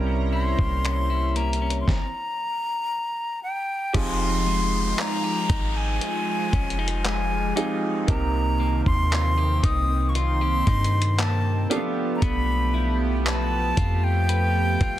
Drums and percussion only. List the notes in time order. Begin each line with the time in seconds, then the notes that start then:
0.59 kick
0.85 finger snap, closed hi-hat
1.36 closed hi-hat
1.53 closed hi-hat
1.70 closed hi-hat
1.88 kick, snare
3.94 kick, closed hi-hat, crash
4.98 clap, closed hi-hat
5.50 kick, closed hi-hat
6.01 closed hi-hat
6.53 kick, closed hi-hat
6.70 closed hi-hat
6.88 closed hi-hat
7.05 clap, closed hi-hat
7.57 closed hi-hat
8.08 kick, closed hi-hat
8.86 kick
9.12 clap, closed hi-hat
9.63 kick, closed hi-hat
10.15 closed hi-hat
10.67 kick, closed hi-hat
10.84 closed hi-hat
11.02 closed hi-hat
11.19 clap, closed hi-hat
11.71 closed hi-hat
12.22 kick, closed hi-hat
13.26 clap, closed hi-hat
13.77 kick, closed hi-hat
14.29 closed hi-hat
14.81 kick, closed hi-hat